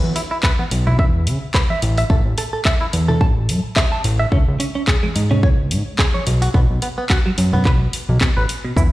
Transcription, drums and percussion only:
0.16 open hi-hat
0.43 kick, clap
0.59 high conga
0.71 open hi-hat
0.87 low conga
0.99 kick
1.27 open hi-hat
1.54 kick, clap
1.70 high conga
1.82 open hi-hat
1.98 open hi-hat
2.10 kick
2.38 open hi-hat
2.65 kick, clap
2.93 open hi-hat
3.09 low conga
3.21 kick
3.49 open hi-hat
3.76 kick, clap
4.04 open hi-hat
4.32 kick
4.60 open hi-hat
4.88 kick, clap
5.04 high conga
5.16 open hi-hat
5.31 low conga
5.43 kick
5.71 open hi-hat
5.99 kick, clap
6.15 high conga
6.27 open hi-hat
6.42 open hi-hat
6.54 kick
6.82 open hi-hat
7.10 kick, clap
7.38 open hi-hat
7.53 low conga
7.65 kick, clap
7.93 open hi-hat
8.09 high conga
8.21 kick, clap
8.49 open hi-hat
8.77 kick, shaker

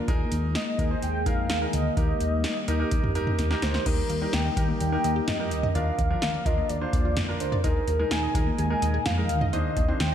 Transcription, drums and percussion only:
0.08 kick, closed hi-hat
0.32 closed hi-hat
0.55 snare, closed hi-hat
0.79 kick, closed hi-hat
1.02 closed hi-hat
1.26 kick, closed hi-hat
1.50 snare, closed hi-hat
1.73 closed hi-hat
1.97 kick, closed hi-hat
2.21 closed hi-hat
2.44 snare, closed hi-hat
2.68 closed hi-hat
2.91 kick, closed hi-hat
3.04 mid tom
3.15 closed hi-hat
3.27 mid tom
3.39 snare, closed hi-hat
3.51 snare
3.62 snare, closed hi-hat
3.74 snare
3.86 kick, closed hi-hat, crash
4.10 closed hi-hat
4.33 snare, closed hi-hat
4.57 kick, closed hi-hat
4.80 closed hi-hat
5.04 closed hi-hat
5.28 snare, closed hi-hat, mid tom
5.51 closed hi-hat
5.63 mid tom
5.75 closed hi-hat
5.99 kick, closed hi-hat
6.22 snare, closed hi-hat
6.46 kick, closed hi-hat
6.69 closed hi-hat
6.93 kick, closed hi-hat
7.17 snare, closed hi-hat, mid tom
7.40 closed hi-hat
7.52 mid tom
7.64 kick, closed hi-hat
7.88 closed hi-hat
8.11 snare, closed hi-hat
8.35 kick, closed hi-hat
8.58 closed hi-hat
8.82 closed hi-hat
9.06 snare, closed hi-hat, mid tom
9.29 closed hi-hat
9.41 mid tom
9.53 closed hi-hat
9.77 kick, closed hi-hat
10.00 snare, closed hi-hat

